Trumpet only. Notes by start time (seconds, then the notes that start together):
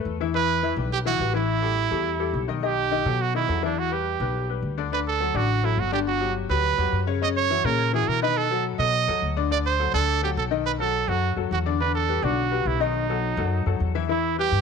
0.35 B4
0.92 G4
1.07 F#4
1.35 E4
2.64 G4
3.22 F#4
3.36 E4
3.65 D4
3.79 F#4
3.93 G4
4.93 B4
5.07 A4
5.37 F#4
5.65 E4
5.80 F#4
5.94 G4
6.07 F#4
6.51 B4
7.23 D#5
7.37 C#5
7.65 A#4
7.95 G#4
8.08 A#4
8.22 B4
8.37 A4
8.80 D#5
9.52 D5
9.66 C5
9.94 A4
10.24 G4
10.38 A4
10.66 B4
10.80 A4
11.09 F#4
11.53 F#4
11.81 B4
11.95 A4
12.24 F#4
12.67 E4
12.81 D#4
14.10 E4
14.39 G4